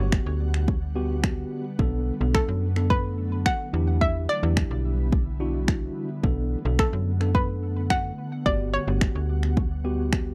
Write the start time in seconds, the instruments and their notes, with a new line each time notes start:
Already playing: ambient pad D3 G3 B3 F#5, synth pluck C#5
0.00 fm bass G1, tine electric piano B3 F#4 G4
0.12 finger snap, kick
0.26 fm bass D2
0.54 finger snap
0.68 kick
0.96 tine electric piano B3 F#4 G4
1.24 finger snap, kick
1.79 fm bass B1, ambient pad F#3 A3, tine electric piano B3 D4 A4, kick
2.20 fm bass B1, tine electric piano B3 D4 A4
2.35 synth pluck A4, finger snap, kick
2.48 fm bass F#2
2.76 tine electric piano B3 D4 A4, finger snap
2.90 synth pluck B4, kick
3.46 synth pluck F#5, finger snap, kick
3.73 fm bass E2, ambient pad E3 G3 E4, tine electric piano D4 E4 G4
4.01 synth pluck E5, kick
4.29 synth pluck D5
4.43 fm bass E2, tine electric piano D4 E4 G4
4.57 finger snap, kick
4.71 fm bass B1
5.12 kick
5.40 tine electric piano D4 E4 F#4
5.68 finger snap, kick
6.23 fm bass B1, ambient pad A3 F#5, tine electric piano B3 D4 A4, kick
6.65 fm bass B1, tine electric piano B3 D4 A4
6.79 synth pluck A4, finger snap, kick
6.93 fm bass F#2
7.21 tine electric piano B3 D4 A4, finger snap
7.35 synth pluck B4, kick
7.90 synth pluck F#5, finger snap, kick
8.46 fm bass G1, ambient pad G3, tine electric piano B3 F#4 G4, synth pluck D5, kick
8.74 synth pluck C#5
8.87 fm bass G1, tine electric piano B3 F#4 G4
9.01 finger snap, kick
9.15 fm bass D2
9.43 finger snap
9.57 kick
9.84 tine electric piano B3 F#4 G4
10.13 finger snap, kick